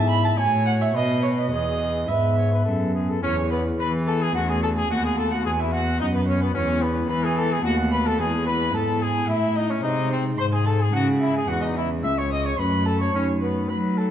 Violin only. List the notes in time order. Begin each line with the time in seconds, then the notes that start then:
0.10 B5
0.25 A5
0.38 G#5
0.66 F#5
0.81 E5
0.94 D#5
1.23 C#5
1.38 D#5
1.51 D#5
2.08 E5
3.23 C#5
3.51 B4
3.80 B5
4.07 A5
4.22 G#5
4.35 F#5
4.48 G#5
4.63 A5
4.76 G#5
4.91 F#5
5.04 G#5
5.19 A5
5.32 F#5
5.46 G#5
5.60 E5
5.74 F#5
6.01 D#5
6.15 B4
6.28 C#5
6.41 B4
6.55 C#5
6.82 B4
7.10 B5
7.24 G#5
7.37 A5
7.51 G#5
7.64 F#5
7.92 B5
8.05 A5
8.18 G#5
8.47 B5
8.74 A5
9.02 G#5
9.28 E5
9.56 D#5
9.69 C#5
9.83 D#5
10.10 C5
10.38 C6
10.52 G#5
10.66 A5
10.78 G#5
10.92 F#5
11.20 E5
11.34 G#5
11.48 F#5
11.62 D#5
11.76 E5
12.03 E6
12.18 C#6
12.31 D#6
12.45 C#6
12.59 B5
12.86 A5
13.00 C#6
13.14 C#5
13.42 B4
13.69 B5
13.97 A5